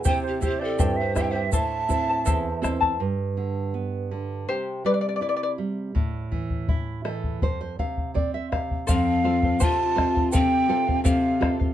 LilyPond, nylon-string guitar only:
\new Staff \with { instrumentName = "Nylon-string guitar" } { \time 2/4 \key f \lydian \tempo 4 = 82 << { r2 | r2 | r2 | r2 |
r4. a'8 | c''16 c''16 f''8 d''16 e''16 f''8 | r2 | r2 | } \\ { c8 <c' e' g'>8 g,8 <c' e' g'>8 | a,8 <c' e' a'>8 e,8 <c' e' a'>8 | g,8 d8 b8 d8 | c8 g8 e'8 g8 |
a,8 e8 e'8 e8 | f,8 c8 c'8 c8 | f,8 <c' f' a'>8 c8 <c' f' a'>8 | c8 <c' f' a'>8 c8 <c' f' a'>8 | } >> }